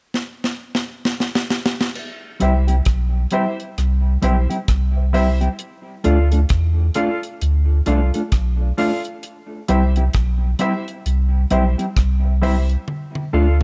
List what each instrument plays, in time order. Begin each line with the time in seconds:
0.14 snare
0.44 snare
0.75 snare
1.05 snare
1.20 snare
1.35 snare
1.50 snare
1.66 snare
1.81 snare
1.95 crash
2.40 sub bass C2, clean electric guitar G3 C4 E4 G4, upright piano E4 G4 C5 E5, closed hi-hat
2.67 clean electric guitar G3 C4 E4 G4, closed hi-hat
2.85 sub bass B1, kick, cross-stick, closed hi-hat
3.31 clean electric guitar G3 C4 E4 G4, upright piano E4 G4 C5 E5, closed hi-hat
3.60 closed hi-hat
3.78 sub bass C2, cross-stick, closed hi-hat
4.22 sub bass B1, clean electric guitar G3 C4 E4 G4, upright piano E4 G4 C5 E5, closed hi-hat
4.50 clean electric guitar G3 C4 E4 G4, closed hi-hat
4.68 sub bass C2, kick, cross-stick, closed hi-hat
4.97 upright piano C5 E5
5.13 clean electric guitar G3 C4 E4 G4, upright piano E4 G4 C5 E5, open hi-hat
5.41 clean electric guitar G3 C4 E4 G4, closed hi-hat
5.59 closed hi-hat
6.04 sub bass D2, clean electric guitar A3 D4 F4 A4, upright piano F4 A4 D5 F5, closed hi-hat
6.32 clean electric guitar A3 D4 F4 A4, closed hi-hat
6.49 sub bass E2, kick, cross-stick, closed hi-hat
6.94 clean electric guitar A3 D4 F4 A4, upright piano F4 A4 D5 F5, closed hi-hat
7.23 closed hi-hat
7.41 sub bass D2, closed hi-hat
7.86 sub bass C2, clean electric guitar A3 D4 F4 A4, upright piano F4 A4 D5 F5, closed hi-hat
8.14 clean electric guitar A3 D4 F4 A4, closed hi-hat
8.32 sub bass B1, kick, cross-stick, closed hi-hat
8.60 upright piano D5 F5
8.77 clean electric guitar A3 D4 F4 A4, upright piano F4 A4 D5 F5, open hi-hat
9.05 closed hi-hat
9.23 closed hi-hat
9.68 sub bass C2, clean electric guitar G3 C4 E4 G4, upright piano E4 G4 C5 E5, closed hi-hat
9.96 clean electric guitar G3 C4 E4 G4, closed hi-hat
10.13 sub bass B1, kick, cross-stick, closed hi-hat
10.59 clean electric guitar G3 C4 E4 G4, upright piano E4 G4 C5 E5, closed hi-hat
10.88 closed hi-hat
11.06 sub bass C2, closed hi-hat
11.51 sub bass B1, clean electric guitar G3 C4 E4 G4, upright piano E4 G4 C5 E5, closed hi-hat
11.78 clean electric guitar G3 C4 E4 G4, closed hi-hat
11.96 sub bass C2, kick, cross-stick, closed hi-hat
12.24 upright piano C5 E5
12.42 clean electric guitar G3 C4 E4 G4, upright piano E4 G4 C5 E5, open hi-hat
12.69 closed hi-hat
12.88 high tom
13.15 high tom
13.33 sub bass D2, clean electric guitar A3 D4 F4 A4, upright piano F4 A4 D5 F5